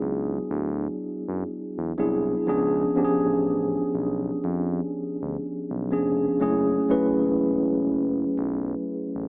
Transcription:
Already playing: tine electric piano F#3 B3 D4 E4 F#4 G#4
0.02 analog synth bass C#2
0.51 analog synth bass D2
1.28 analog synth bass F#2
1.78 analog synth bass E2
1.98 analog synth bass C2, tine electric piano F#3 B3 D4 E4 G#4
2.47 analog synth bass C#2, tine electric piano F3 B3 C#4 D4 G#4
2.96 tine electric piano F3 B3 C#4 D4 G4
3.05 tine electric piano G#4
3.25 analog synth bass A1
3.95 analog synth bass B1
4.44 analog synth bass F2
5.22 analog synth bass D2
5.71 analog synth bass B1
5.91 analog synth bass F1, tine electric piano F3 B3 C#4 D4 G#4
6.40 analog synth bass F#1, tine electric piano F#3 A3 C#4 E4 G#4
6.89 tine electric piano F#3 A3 C#4 E4 B4
7.18 analog synth bass E1
7.88 analog synth bass F#1
8.38 analog synth bass B1
9.15 analog synth bass A1

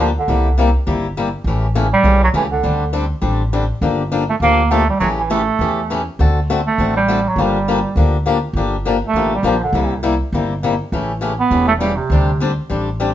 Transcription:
Already playing: upright bass D2
0.00 bass clarinet F3
0.19 bass clarinet D3
0.28 upright bass C2, steel-string acoustic guitar C3 G3 A#3 E4 G4
0.58 steel-string acoustic guitar C3 G3 A#3 E4 G4
0.87 upright bass G1, steel-string acoustic guitar C3 G3 A#3 E4 G4
1.17 steel-string acoustic guitar C3 G3 A#3 E4 G4
1.44 upright bass A1, steel-string acoustic guitar C#3 E3 A3 C#4 G4
1.75 steel-string acoustic guitar C#3 E3 A3 C#4 G4
1.93 bass clarinet G3
2.04 upright bass B1, steel-string acoustic guitar C#3 E3 A3 C#4 G4
2.24 bass clarinet F#3
2.34 upright bass C#2, steel-string acoustic guitar C#3 E3 A3 C#4 G4, bass clarinet E3
2.52 bass clarinet D3
2.63 upright bass D2, steel-string acoustic guitar D3 G3 C4 D4 G4
2.93 steel-string acoustic guitar D3 G3 C4 D4 G4
3.22 upright bass A1, steel-string acoustic guitar D3 G3 C4 D4 G4
3.53 steel-string acoustic guitar D3 G3 C4 D4 G4
3.81 upright bass G1, steel-string acoustic guitar D3 F3 A#3 D4 G4
4.12 steel-string acoustic guitar D3 F3 A#3 D4 G4
4.30 bass clarinet A3
4.40 upright bass D2, steel-string acoustic guitar D3 F3 A#3 D4 G4, bass clarinet A#3
4.71 steel-string acoustic guitar D3 F3 A#3 D4 G4, bass clarinet A3
4.89 bass clarinet G3
5.00 upright bass A1, steel-string acoustic guitar C#3 E3 A3 C#4 G4, bass clarinet F#3
5.19 bass clarinet E3
5.30 steel-string acoustic guitar C#3 E3 A3 C#4 G4, bass clarinet A3
5.59 upright bass E2, steel-string acoustic guitar C#3 E3 A3 C#4 G4
5.90 steel-string acoustic guitar C#3 E3 A3 C#4 G4
6.19 upright bass D2, steel-string acoustic guitar D3 A3 C4 F#4 A4
6.50 steel-string acoustic guitar D3 A3 C4 F#4 A4
6.67 bass clarinet A3
6.78 upright bass A1, steel-string acoustic guitar D3 A3 C4 F#4 A4
6.96 bass clarinet G3
7.08 steel-string acoustic guitar D3 A3 C4 F#4 A4
7.28 bass clarinet F#3
7.36 upright bass G1, steel-string acoustic guitar D3 F3 A#3 D4 G4
7.41 bass clarinet G3
7.68 steel-string acoustic guitar D3 F3 A#3 D4 G4
7.96 upright bass D2, steel-string acoustic guitar D3 F3 A#3 D4 G4
8.26 steel-string acoustic guitar D3 F3 A#3 D4 G4
8.53 upright bass G1, steel-string acoustic guitar D3 F3 G4
8.57 steel-string acoustic guitar A#3 D4
8.85 steel-string acoustic guitar D3 F3 A#3 D4 G4
9.07 bass clarinet A3
9.13 upright bass A1, steel-string acoustic guitar D3 F3 A#3 D4 G4
9.35 bass clarinet G3
9.43 upright bass A#1, steel-string acoustic guitar D3 F3 A#3 D4 G4, bass clarinet F3
9.64 bass clarinet D3
9.73 upright bass C2, steel-string acoustic guitar C3 G3 A#3 E4 G4
10.03 steel-string acoustic guitar C3 G3 A#3 E4 G4
10.32 upright bass G1, steel-string acoustic guitar C3 G3 A#3 E4 G4
10.63 steel-string acoustic guitar C3 G3 A#3 E4 G4
10.92 upright bass A1, steel-string acoustic guitar C#3 E3 A3 C#4 G4
11.21 steel-string acoustic guitar C#3 E3 A3 C#4 G4
11.40 bass clarinet B3
11.51 upright bass E1, steel-string acoustic guitar C#3 E3 A3 C#4 G4
11.68 bass clarinet A3
11.79 steel-string acoustic guitar C#3 E3 A3 C#4 G4, bass clarinet G3
11.96 bass clarinet C3
12.10 upright bass D2, steel-string acoustic guitar D3 G3 C4 D4 G4
12.40 steel-string acoustic guitar D3 G3 C4 D4 G4
12.70 upright bass A1, steel-string acoustic guitar D3 G3 C4 D4 G4
13.00 steel-string acoustic guitar D3 G3 C4 D4 G4

